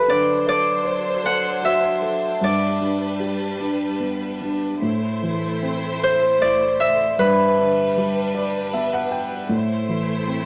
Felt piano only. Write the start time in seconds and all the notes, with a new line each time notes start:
0.08 D3
0.45 A4
0.85 C5
1.24 A4
1.62 F#4
2.02 A4
2.41 G2
2.80 D4
3.20 G4
3.60 D4
4.00 B3
4.41 D4
4.82 A2
5.22 E3
5.62 C4
6.41 E4
7.19 G2
7.59 D3
7.97 G3
8.35 D5
8.73 B3 E5
8.93 F#5
9.11 G5
9.49 A2
9.89 E3
10.27 C4